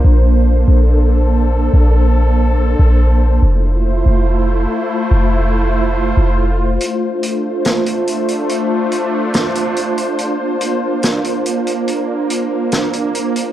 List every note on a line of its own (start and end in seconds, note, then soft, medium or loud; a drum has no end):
0.00 3.38 A#3 medium
0.00 3.38 D4 medium
0.00 3.38 C5 medium
0.05 0.65 A#1 loud
0.05 3.39 A4 medium
0.68 1.69 A#1 loud
1.74 2.75 A#1 loud
2.79 3.40 A#1 loud
3.42 4.03 F1 loud
3.42 6.77 A3 medium
3.42 6.77 E4 medium
3.42 13.52 F4 medium
3.42 13.52 C5 medium
4.06 4.67 F1 loud
5.11 6.13 F1 loud
6.17 6.78 F1 loud
6.81 10.15 A3 medium
6.81 13.52 D4 medium
6.81 closed hi-hat medium
7.23 closed hi-hat medium
7.65 snare loud
7.65 closed hi-hat medium
7.86 closed hi-hat medium
8.07 closed hi-hat medium
8.28 closed hi-hat medium
8.49 closed hi-hat medium
8.92 closed hi-hat medium
9.34 snare loud
9.34 closed hi-hat medium
9.55 closed hi-hat medium
9.76 closed hi-hat medium
9.98 closed hi-hat medium
10.19 13.52 A#3 medium
10.19 closed hi-hat medium
10.61 closed hi-hat medium
11.03 snare loud
11.03 closed hi-hat medium
11.24 closed hi-hat medium
11.46 closed hi-hat medium
11.67 closed hi-hat medium
11.88 closed hi-hat medium
12.30 closed hi-hat medium
12.72 snare loud
12.72 closed hi-hat medium
12.93 closed hi-hat medium
13.15 closed hi-hat medium
13.36 closed hi-hat medium